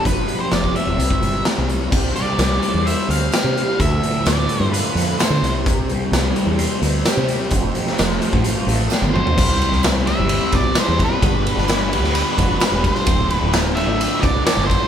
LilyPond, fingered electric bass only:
\new Staff \with { instrumentName = "Fingered electric bass" } { \clef bass \time 4/4 \key c \major \tempo 4 = 129 f,,8 r8 f,,8 r16 d,,16 c,8 g,,8 r16 c,8. | c,8 r8 c,8 r16 e,8 r16 d,8 r16 c8 r16 | d,8 r8 d,8 r16 g,8 r16 f,8 r16 d16 c,8~ | c,4 c,8 r16 e,8 r16 d,8 r16 c8 r16 |
f,,8 r8 f,,8 r16 a,,8 r16 a,,8 r16 g,,8 r16 | c,8. c,4 g,,8 r16 b,,8 r16 e,8 r16 | g,,8. g,,4 d,8 r16 f,,8 r16 e,,8 r16 | d,,8. d,,4 a,,8 r16 c,8 r16 g,,8 r16 | }